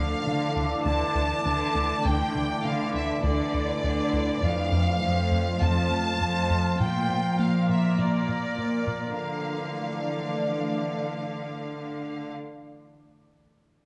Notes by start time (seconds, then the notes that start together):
Already playing: D2 D3 E3 A3 D4 D5 F5
0.26 D3
0.56 D2
0.85 D2 D3 A5
1.15 D2
1.45 D2 D3
1.75 D2
2.04 D2 D3 G5
2.35 D2
2.64 D3 F5
2.94 D2 E5
3.23 D2 D3 D5
3.54 D2
3.83 D2 D3
4.13 D2
4.43 F2 F3 A3 F4 C5 F5
4.72 F2
5.01 F2 F3
5.31 F2
5.60 F2 A5
5.91 F2
6.21 F2
6.50 F2
6.80 A#2 A#3 A#4 G5
7.10 A#2
7.39 A#2 A#3 F5
7.69 A#2 E5
7.98 A#2 D5
8.28 A#2
8.58 A#2
8.87 A#2
9.17 D3 E3 A3 D4 D5 F5